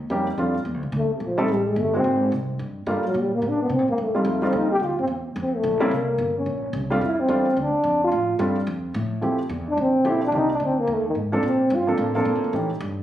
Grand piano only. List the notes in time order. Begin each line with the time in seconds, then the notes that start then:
0.10 G3 A#3 C#4 D#4 G4
0.38 G3 A3 C4 D4 F4
1.38 G3 A3 C4 D#4 A4
1.94 G#3 A#3 C4 D#4 F#4
2.87 G3 A3 A#3 D4 F4
4.15 G3 A3 C4 D#4 F4
4.42 G3 A3 C4 D#4 F4
5.80 G3 A#3 C4 C#4 E4
6.90 G3 A3 C4 D4 F4
7.29 G3 A3 C4 D4 F4
8.39 G3 A3 C4 D4 F4
9.22 F3 A3 C4 E4 G4
10.05 F3 A3 C4 E4 G4
10.33 D#3 A#3 C4 D4 G4
11.32 F3 A#3 C4 D4 A4
11.87 F3 A#3 C4 D4 A4
12.15 F3 A#3 C4 D4 A4
12.53 E3 A3 C#4 D#4 G4